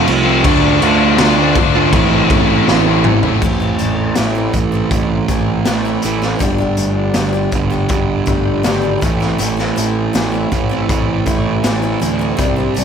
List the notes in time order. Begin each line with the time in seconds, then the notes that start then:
0.07 C2 F3 A3 C4 F4, muted overdriven electric guitar stroke, crash
0.25 A3 C4 F4
0.44 D2 D3 A3 D4 F4, kick, crash
0.81 D2 D3 A3 D4 F4, crash
1.18 D2 D3 A3 D4 F4, snare, crash
1.37 A3 D4 F4
1.55 D2 D3 A3 D4 F4, muted distorted electric guitar stroke, kick, crash
1.75 A3 D4 F4
1.93 A1 A2 E3 A3 C4 E4, kick, crash
2.11 A3 C4 E4
2.30 A1 E3 A3 C4, kick, crash
2.35 E4
2.68 A1 A2 E3 A3 C4 E4, snare
2.86 A3 C4 E4
3.04 E3 A3 C4 E4, muted overdriven electric guitar stroke, mid tom
3.23 C4 E4, floor tom
3.27 A3
3.42 A1 A2 E3 A3 C4, kick, crash
3.46 E4
3.60 A3 C4 E4
3.79 A1 E3 A3 C4 E4, closed hi-hat
4.15 A1 A2 E3 A3 C4 E4, snare, closed hi-hat
4.35 A3 C4 E4
4.53 A1 A2 E3 A3, muted steel-string acoustic guitar stroke, kick, closed hi-hat
4.72 A3 C4 E4
4.91 A1 A2 E3 A3, kick, closed hi-hat
5.28 A1 E3 A3 C4 E4, kick, closed hi-hat
5.65 A1 A2 E3 A3 C4 E4, snare, closed hi-hat
5.85 A3 C4 E4
6.02 A1 A2 E3 A3 C4 E4, closed hi-hat
6.22 A3 C4 E4, snare
6.39 G1 G2 D3 G3 A3 D4 G4, kick, closed hi-hat
6.58 A3 D4 G4
6.77 G1 G3 A3 D4 G4, closed hi-hat
7.14 G1 G3 A3 D4 G4, snare, closed hi-hat
7.18 G2 D3 G3
7.33 A3 D4 G4
7.52 G1 G2 D3 G3, muted steel-string acoustic guitar stroke, kick, closed hi-hat
7.70 A3 D4 G4
7.89 G1 G2 D3 G3, kick, closed hi-hat
8.26 G1 G3 A3 D4 G4, kick, closed hi-hat
8.63 G#1 G2 D3 G3 A3 D4 G4, snare, closed hi-hat
8.82 A3 D4 G4
9.01 A1 A2 E3 A3 C4 E4, kick, closed hi-hat
9.20 A3 C4 E4, snare
9.38 A1 A2 E3 A3 C4 E4, closed hi-hat
9.57 A3 C4 E4, snare
9.76 A1 E3 A3 C4 E4, closed hi-hat
10.13 A1 A2 E3 A3 C4 E4, snare, closed hi-hat
10.32 A3 C4 E4
10.52 A1 A2 E3 A3, muted steel-string acoustic guitar stroke, kick, closed hi-hat
10.69 A3 C4 E4
10.89 A1 A2 E3 A3, kick, closed hi-hat
11.26 A1 E3 A3 C4 E4, kick, closed hi-hat
11.64 A1 A2 E3 A3 C4 E4, snare, closed hi-hat
11.82 A3 C4 E4
12.00 D2 A2 E3 A3 C4 E4, closed hi-hat
12.19 A3 C4 E4
12.37 C2 C3 G3 C4 D4, kick, closed hi-hat
12.56 G3 C4 D4
12.75 C2 C3 G3 C4 D4, closed hi-hat